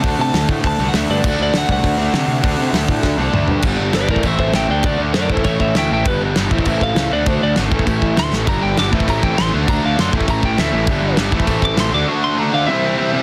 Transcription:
<<
  \new Staff \with { instrumentName = "Lead electric guitar" } { \time 4/4 \key d \mixolydian \tempo 4 = 199 a''8 a''4 r8 a''8. fis''16 e''8 d''8~ | d''8 d''8 fis''8 fis''2~ fis''8~ | fis''2. r4 | r4 <b' d''>8 <bes' d''>8 <c'' e''>8 <c'' e''>8 <e'' g''>8 <d'' g''>8 |
d''8 r8 <bes' d''>8 <a' c''>8 <cis'' e''>8 <cis'' e''>8 <e'' g''>8 <e'' g''>8 | b'8 r2 f''4 d''8 | c''8 d''8 r2 c'''8 r8 | bes''8 g''8 d'''8 r8 bes''8 g''8 c'''8 r8 |
bes''8 f''8 c'''8 r8 bes''8 g''8 e''4~ | e''4 r4. d'''8 c'''8 d'''8 | cis'''8 c'''8 bes''8 f''8 e''2 | }
  \new Staff \with { instrumentName = "Distorted electric guitar" } { \time 4/4 \key d \mixolydian <d a d' fis'>1 | <d a d' fis'>1 | <d a d' fis'>1 | <g, d g b d'>4 <g, d g b d'>8 <a, e a c' e'>8 <a, e a c' e'>4 <a, e a c' e'>8 <d a d' fis'>8 |
<d a d' fis'>4 <d a d' fis'>8 <a, e a cis' e'>8 <a, e a cis' e'>4 <a, e a cis' e'>8 <a, e a cis' e'>8 | <g, d g b d'>4 <g, d g b d'>8 <a, e a c' e'>8 <a, e a c' e'>4 <a, e a c' e'>8 <d a d' fis'>8 | <d a d' fis'>4 <d a d' fis'>8 <a, e a cis' e'>8 <a, e a cis' e'>4 <a, e a cis' e'>8 <a, e a cis' e'>8 | <g, d g b d'>4 <g, d g b d'>8 <a, e a c' e'>8 <a, e a c' e'>4 <a, e a c' e'>8 <d a d' fis'>8 |
<d a d' fis'>4 <d a d' fis'>8 <a, e a cis' e'>8 <a, e a cis' e'>4 <a, e a cis' e'>8 <a, e a cis' e'>8 | <g, d g b d'>4 <g, d g b d'>8 <a, e a c' e'>8 <a, e a c' e'>4 <a, e a c' e'>8 <d a d' fis'>8 | <d a d' fis'>4 <d a d' fis'>8 <d a d' fis'>8 <c e g c' e'>4 <c e g c' e'>8 <c e g c' e'>8 | }
  \new Staff \with { instrumentName = "Distorted electric guitar" } { \clef bass \time 4/4 \key d \mixolydian r1 | r1 | r1 | r1 |
r1 | r1 | r1 | <g, d g>4. <a, e a>2 <d a d'>8~ |
<d a d'>4. <a, e a>2 <a, e a>8 | <g, d g>4. <a, e a>2 <d a d'>8~ | <d a d'>4. <d a d'>8 <c g c'>2 | }
  \new Staff \with { instrumentName = "Overdriven electric guitar" } { \clef bass \time 4/4 \key d \mixolydian <d a d'>2~ <d a d'>8 <d a d'>8 <d a d'>4 | <d a d'>2~ <d a d'>8 <d a d'>8 <d a d'>4 | <d a d'>2~ <d a d'>8 <d a d'>8 <d a d'>4 | <g, d g>4 <g, d g>8 <a, e a>8 <a, e a>4 <a, e a>8 <d a d'>8 |
<d a d'>4 <d a d'>8 <a, e a>8 <a, e a>4 <a, e a>8 <a, e a>8 | <g, d g>4 <g, d g>8 <a, e a>8 <a, e a>4 <a, e a>8 <d a d'>8 | <d a d'>4 <d a d'>8 <a, e a>8 <a, e a>4 <a, e a>8 <a, e a>8 | <g, d g>4 <g, d g>8 <a, e a>8 <a, e a>4 <a, e a>8 <d a d'>8 |
<d a d'>4 <d a d'>8 <a, e a>8 <a, e a>4 <a, e a>8 <a, e a>8 | <g, d g>4 <g, d g>8 <a, e a>8 <a, e a>4 <a, e a>8 <d a d'>8 | <d a d'>4 <d a d'>8 <d a d'>8 <c g c'>4 <c g c'>8 <c g c'>8 | }
  \new Staff \with { instrumentName = "Picked electric bass" } { \clef bass \time 4/4 \key d \mixolydian d,8 c8 d,8 a,8 d,8 c,8 d,8 g,8 | d,8 d,8 d,8 c,8 d,8 d,8 c8 c8 | d,8 c8 d,8 a,8 d,8 c,8 d,8 g,8 | g,,8 g,,8 g,,8 a,,8 a,,8 a,,8 a,,8 d,8 |
d,8 d,8 fis,8 a,,8 a,,8 a,,8 d,8 a,,8 | g,,8 g,,8 g,,8 a,,8 a,,8 a,,8 cis,8 d,8 | d,8 d,8 aes,,8 a,,8 a,,8 a,,8 d,8 a,,8 | g,,8 g,,8 g,,8 a,,8 a,,8 a,,8 a,,8 d,8 |
d,8 d,8 fis,8 a,,8 a,,8 a,,8 d,8 a,,8 | g,,8 g,,8 g,,8 a,,8 a,,8 a,,8 a,,8 d,8 | r1 | }
  \new DrumStaff \with { instrumentName = "Drums" } \drummode { \time 4/4 <hho bd>4 <hho sn>8 bd8 <hho bd>4 <hho sn>4 | <cymc bd>4 <hho sn>8 bd8 <hho bd>4 <hho sn>4 | <hho bd>4 <hho sn>8 bd8 <bd sn>4 toml8 tomfh8 | <cymc bd>4 <cymc sn>8 bd16 bd16 <cymc bd>8 bd8 <cymc sn>4 |
<cymc bd>4 <cymc sn>8 bd16 bd16 <cymc bd>8 bd8 <cymc sn>4 | <cymc bd>4 <cymc sn>8 bd16 bd16 <cymc bd>8 bd8 <cymc sn>4 | <cymc bd>4 <cymc sn>8 bd16 bd16 <cymc bd>8 bd8 <cymc sn>8 sn8 | <cymc bd>4 <cymc sn>8 bd16 bd16 <cymc bd>8 bd8 <cymc sn>4 |
<cymc bd>4 <cymc sn>8 bd16 bd16 <cymc bd>8 bd8 <cymc sn>4 | <cymc bd>4 <cymc sn>8 bd16 bd16 <cymc bd>8 bd8 <cymc sn>4 | r4 r4 r4 r4 | }
>>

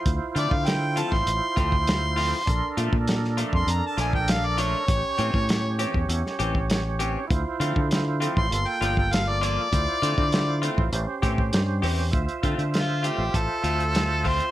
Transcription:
<<
  \new Staff \with { instrumentName = "Harmonica" } { \time 4/4 \key d \minor \tempo 4 = 99 r8 d''16 f''16 g''8 a''16 c'''8. c'''4.~ | c'''8 r4 r16 c'''16 bes''16 a''16 gis''16 g''16 f''16 d''16 cis''8~ | cis''4. r2 r8 | r4. r16 c'''16 c'''16 g''16 g''16 g''16 f''16 d''16 d''8~ |
d''4. r2 r8 | r4 f'8 g'8 a'4. c''8 | }
  \new Staff \with { instrumentName = "Tonewheel organ" } { \time 4/4 \key d \minor <e' f' c''>1 | <d' a' bes'>1 | <cis' g' cis''>1 | <e' f' c''>2 <bes f' a'>2 |
<e' f' c''>2 <cis' g' bis'>2 | <f' c'' e''>1 | }
  \new Staff \with { instrumentName = "Clean electric guitar" } { \time 4/4 \key d \minor r8 <f a c' f'>8 r8 <f a c' f'>8 r8 <f a c' f'>8 r8 <f a c' f'>8 | r8 <f a d' f'>8 r8 <f a d' f'>8 r8 <f a d' f'>8 r8 <f a d' f'>8 | r8 <e bis cis' g'>8 r8 <e bis cis' g'>8 r8 <e bis cis' g'>8 r8 <e bis cis' g'>8 | r8 <f a c' f'>8 r8 <f a c' f'>8 r8 <f bes d' f'>8 r8 <f bes d' f'>8 |
r8 <a c' f'>8 r8 <a c' f'>8 r8 <e bis cis' g'>8 r8 <e bis cis' g'>8 | r8 <a c' f'>8 r8 <a c' f'>8 r8 <a c' f'>8 r8 <a c' f'>8 | }
  \new Staff \with { instrumentName = "Fingered electric bass" } { \clef bass \time 4/4 \key d \minor d,16 r16 d16 d4 a,,16 a,,16 r16 d,4. | bes,,16 r16 bes,16 bes,4 f,16 f,16 r16 bes,,4. | a,,16 r16 a,16 a,4 e,16 e,16 r16 a,,4. | d,16 r16 d16 d4 a,,16 g,,16 r16 g,,4. |
d,16 r16 d16 d4 a,,16 a,,16 r16 a,8 g,8 e,8 | d,16 r16 d16 d4 a,,16 a,,16 r16 d,4. | }
  \new DrumStaff \with { instrumentName = "Drums" } \drummode { \time 4/4 <hh bd>8 hh16 bd16 <hh sn>8 hh16 <bd sn>16 hh8 <hh bd>16 bd16 <hh sn>8 hho8 | <hh bd>8 hh16 bd16 <hh sn>16 sn16 hh16 bd16 hh8 hh16 bd16 <hh sn>8 hh8 | <hh bd>8 hh16 bd16 <hh sn>8 hh16 bd16 hh16 sn16 hh16 bd16 <hh sn>8 hh8 | <hh bd>8 hh16 bd16 <hh sn>8 hh16 bd16 hh8 hh16 bd16 <hh sn>8 hh8 |
<hh bd>8 hh16 bd16 <hh sn>8 hh16 bd16 hh8 <hh bd>16 bd16 <hh sn>8 hho8 | <hh bd>16 hh16 <hh bd>16 hh16 <hh sn>8 hh8 <hh bd>8 hh16 hh16 <hh sn>8 <hho bd>16 hh16 | }
>>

